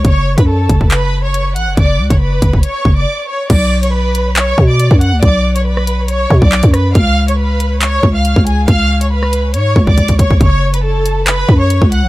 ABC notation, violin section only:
X:1
M:4/4
L:1/16
Q:1/4=139
K:F#m
V:1 name="Violin section"
[cc']3 [Bb] [Aa]4 [Bb]3 [cc']3 [ff']2 | [dd']3 [cc'] [Bb]4 [cc']3 [dd']3 [cc']2 | [dd']3 [cc'] [Bb]4 [cc']3 [dd']3 [ff']2 | [dd']3 [cc'] [Bb]4 [cc']3 [dd']3 [Bb]2 |
[^e^e']3 [cc'] [Bb]4 [cc']3 [ee']3 [Gg]2 | [^e^e']3 [cc'] [Bb]4 [cc']3 [dd']3 [cc']2 | [cc']3 [Bb] [Aa]4 [Bb]3 [cc']3 [ff']2 |]